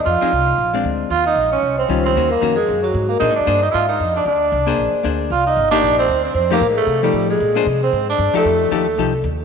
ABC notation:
X:1
M:4/4
L:1/16
Q:"Swing" 1/4=229
K:Bbmix
V:1 name="Vibraphone"
f12 z4 | f2 e4 _d4 c4 c2- | c2 B4 A4 _G4 B2 | e2 d4 e3/2 =e/2 f2 _e4 d2 |
d12 z4 | f2 e4 d4 c4 c2 | c2 B3 A =A4 G4 _A2- | A6 c4 d4 =A2- |
=A12 z4 |]
V:2 name="Hollow-body jazz guitar"
z2 [F,CEA]2 z6 [A,CD]6 | z12 [E,G,_DF]4 | [E,B,_D_G]2 z2 [E,B,DG]2 z8 z2 | [B,DAc]2 z2 [B,DAc]2 z8 z2 |
z6 [B,DAc]6 [B,DAc]4 | z6 [B,EG]6 z4 | z2 [F,=A,EG]2 z6 [F,A,EG]6 | z2 [B,DAc]2 z8 z2 [F,EG=A]2- |
[F,EG=A]4 [F,EGA]2 z2 [F,EGA]2 z6 |]
V:3 name="Tenor saxophone"
F12 z4 | F2 E4 _D4 C4 C2- | C2 B,4 A,4 _G,4 B,2 | E2 D4 E3/2 =E/2 F2 _E4 D2 |
D12 z4 | F2 E4 D4 C4 C2 | C2 B,3 A, =A,4 G,4 _A,2- | A,6 C4 D4 =A,2- |
=A,12 z4 |]
V:4 name="Upright bass" clef=bass
F,,2 z2 C,,4 B,,,4 D,,4 | E,,4 B,,,4 C,,4 _D,,4 | E,,4 F,,4 _G,,4 A,,4 | (3B,,2 A,,2 F,,2 G,,4 A,,4 F,,4 |
D,,4 C,,4 B,,,2 z2 D,,4 | C,,4 G,,,4 B,,,4 D,,4 | F,,4 =A,,4 C,4 A,,4 | B,,4 C,4 A,,4 G,,2 z2 |
F,,4 E,,4 C,,4 E,,4 |]